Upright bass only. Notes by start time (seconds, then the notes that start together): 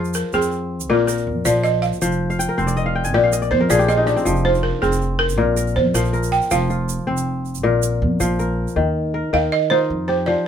Already playing: F2
0.33 F2
0.89 A#1
1.27 F2
1.46 A#1
2.02 F1
2.58 F1
3.14 A#1
3.51 F2
3.70 A#1
4.26 F1
4.82 F1
5.39 A#1
5.77 F2
5.94 A#1
6.51 F1
7.08 F1
7.64 A#1
8.02 F2
8.21 A#1
8.76 D#2
9.33 D#2
9.90 F2